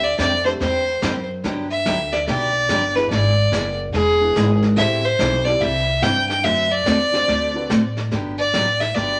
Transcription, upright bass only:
0.00 0.17 D2 medium
0.18 0.59 F2 medium
0.60 1.01 E2 medium
1.02 1.43 F#2 loud
1.44 1.84 G2 medium
1.86 2.26 D2 medium
2.28 2.68 B1 medium
2.69 3.10 G1 medium
3.10 3.51 G#1 medium
3.52 3.93 F#1 medium
3.94 4.34 E1 medium
4.36 4.76 G#1 medium
4.77 5.18 A1 medium
5.19 5.60 B1 medium
5.61 6.01 C2 medium
6.03 6.43 G2 loud
6.45 6.85 F#2 medium
6.87 7.27 E2 medium
7.28 7.69 D2 medium
7.70 8.11 A2 loud
8.12 8.45 G1 medium
8.53 8.89 A1 medium
8.95 9.20 G1 medium

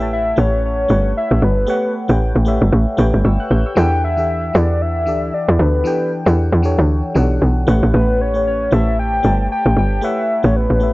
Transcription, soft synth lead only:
0.00 0.11 E5 loud
0.13 0.37 E5 loud
0.39 0.63 C#5 loud
0.65 1.13 C#5 loud
1.17 1.45 E5 loud
1.43 1.95 B4 medium
3.78 4.02 G5 loud
4.04 4.58 E5 loud
4.56 4.83 D5 loud
4.82 5.35 E5 loud
5.34 5.61 D5 medium
5.60 6.12 B4 medium
7.95 8.23 B4 loud
8.21 8.47 C#5 loud
8.47 8.71 C#5 loud
8.73 8.97 E5 loud
8.99 9.47 G5 loud
9.52 9.75 G5 loud
9.78 10.02 G5 loud
10.04 10.42 E5 loud
10.45 10.55 C#5 medium
10.56 10.93 B4 medium

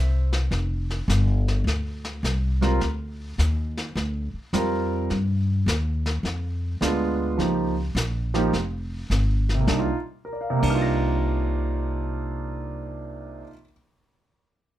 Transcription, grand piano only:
0.00 0.30 C5 medium
0.00 0.29 E5 medium
2.61 2.78 G3 medium
2.61 2.79 C4 medium
2.61 2.79 F4 medium
2.61 2.79 A#4 medium
4.53 5.10 G3 medium
4.53 5.10 C4 medium
4.53 5.10 F4 medium
4.53 5.10 A#4 medium
6.81 7.38 G#3 medium
6.81 7.38 B3 medium
6.81 7.39 D4 medium
6.81 7.39 F4 medium
7.38 7.72 F3 medium
7.38 7.72 A#3 soft
7.38 7.73 D#4 medium
7.38 7.73 G4 medium
8.34 8.51 F3 medium
8.34 8.51 A#3 medium
8.34 8.51 D#4 medium
8.34 8.52 G4 medium
9.55 9.84 C3 medium
9.60 9.87 A#3 medium
9.67 9.90 D4 medium
9.73 9.93 D#4 medium
9.80 9.96 F4 medium
10.25 13.42 A#4 soft
10.33 13.46 D5 soft
10.41 13.50 F5 soft
10.50 13.40 C3 medium
10.50 13.55 A#5 soft
10.57 13.43 A#3 medium
10.57 13.60 D6 soft
10.62 13.46 D4 medium
10.69 13.49 D#4 medium
10.69 13.65 F6 soft
10.75 13.53 F4 medium
10.82 13.71 A#6 soft

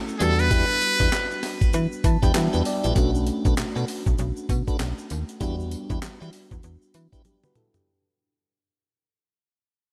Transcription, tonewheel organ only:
0.19 0.35 D4 medium
0.19 0.35 E4 medium
0.19 0.35 G4 medium
0.19 0.35 B4 loud
0.50 0.66 D4 loud
0.50 0.66 E4 loud
0.50 0.66 G4 medium
0.50 0.66 B4 loud
1.00 1.10 D4 medium
1.00 1.10 E4 medium
1.00 1.10 G4 medium
1.00 1.10 B4 medium
2.22 2.32 D4 medium
2.22 2.32 E4 medium
2.22 2.32 G4 medium
2.22 2.32 B4 medium
2.53 2.63 D4 medium
2.53 2.63 E4 medium
2.53 2.63 G4 medium
2.53 2.63 B4 medium
2.83 2.93 D4 medium
2.83 2.93 E4 medium
2.83 2.94 G4 medium
2.83 2.94 B4 medium
2.95 3.11 D4 loud
2.95 3.11 F#4 medium
2.95 3.11 A4 medium
2.95 3.11 B4 loud
3.45 3.55 D4 medium
3.45 3.55 F#4 medium
3.45 3.55 A4 medium
3.45 3.55 B4 medium
3.75 3.85 D4 medium
3.75 3.85 F#4 medium
3.75 3.85 A4 medium
3.75 3.85 B4 medium
4.67 4.77 D4 medium
4.67 4.77 F#4 medium
4.67 4.77 A4 medium
4.67 4.77 B4 medium
5.40 5.56 D4 loud
5.40 5.56 E4 medium
5.40 5.56 G4 medium
5.40 5.56 B4 loud
5.89 5.99 D4 medium
5.89 5.99 E4 medium
5.89 6.00 G4 medium
5.89 6.00 B4 medium
6.20 6.30 D4 medium
6.20 6.30 E4 medium
6.20 6.30 G4 medium
6.20 6.30 B4 medium
7.12 7.22 D4 medium
7.12 7.22 E4 medium
7.12 7.22 G4 medium
7.12 7.22 B4 medium

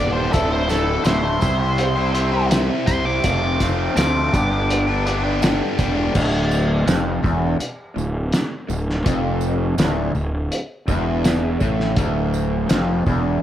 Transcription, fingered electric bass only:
0.00 0.29 D#1 medium
0.34 0.97 D1 loud
1.05 1.37 D1 medium
1.43 2.69 C2 medium
2.87 3.19 C2 loud
3.24 3.87 F1 loud
3.96 4.28 D2 loud
4.34 5.60 G1 medium
5.78 6.10 E1 medium
6.15 6.84 D1 loud
6.87 7.21 F1 loud
7.24 7.58 E1 medium
7.61 muted fingered electric bass stroke soft
7.96 8.30 D1 medium
8.70 9.03 D1 medium
9.06 9.75 F1 loud
9.79 10.12 D1 loud
10.15 10.49 D1 medium
10.88 11.57 E1 medium
11.61 11.95 A1 medium
11.97 12.66 D1 loud
12.70 13.04 F1 medium
13.06 13.40 E1 medium

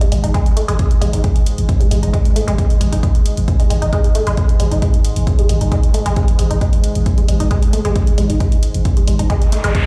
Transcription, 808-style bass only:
0.01 0.11 G#1 medium
0.12 0.23 G#1 loud
0.24 0.34 G#1 medium
0.46 0.57 G#1 medium
0.69 0.79 G#1 medium
0.91 1.01 G#1 medium
1.02 1.13 G#1 medium
1.13 1.24 G#1 medium
1.36 1.46 G#1 medium
1.58 1.69 G#1 medium
1.80 1.91 G#1 medium
1.91 2.02 G#1 loud
2.03 2.13 G#1 medium
2.25 2.36 G#1 medium
2.48 2.58 G#1 medium
2.70 2.80 G#1 medium
2.81 2.92 G#1 medium
2.92 3.03 G#1 medium
3.15 3.25 G#1 medium
3.37 3.48 G#1 medium
3.60 3.70 G#1 medium
3.70 3.82 G#1 loud
3.82 3.93 G#1 medium
4.04 4.15 G#1 medium
4.27 4.37 G#1 medium
4.49 4.59 G#1 medium
4.60 4.71 G#1 loud
4.72 4.82 G#1 medium
4.94 5.05 G#1 medium
5.16 5.27 G#1 medium
5.39 5.49 G#1 medium
5.49 5.61 G#1 loud
5.61 5.72 G#1 medium
5.83 5.94 G#1 medium
6.06 6.16 G#1 medium
6.29 6.39 G#1 medium
6.39 6.50 G#1 medium
6.51 6.61 G#1 medium
6.73 6.84 G#1 medium
6.96 7.06 G#1 medium
7.18 7.28 G#1 medium
7.29 7.40 G#1 loud
7.40 7.51 G#1 medium
7.63 7.73 G#1 medium
7.85 7.96 G#1 medium
8.08 8.18 G#1 medium
8.18 8.29 G#1 loud
8.30 8.40 G#1 medium
8.52 8.63 G#1 medium
8.75 8.85 G#1 medium
8.97 9.07 G#1 medium
9.08 9.19 G#1 loud
9.19 9.30 G#1 medium
9.42 9.52 G#1 medium
9.64 9.75 G#1 medium

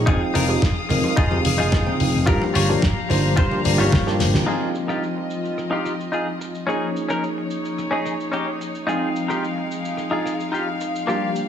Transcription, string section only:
0.00 2.23 G#4 medium
0.07 2.25 F5 medium
0.07 2.25 D#6 medium
2.27 4.45 G4 medium
2.27 4.45 F5 medium
2.27 4.45 A#5 medium
4.48 6.66 F4 medium
4.48 6.66 D#5 medium
6.67 11.04 D#4 medium
6.67 8.86 C#5 medium
8.88 11.06 G#3 medium
8.88 11.48 F5 medium
11.08 11.48 A#3 medium
11.08 11.48 G4 medium

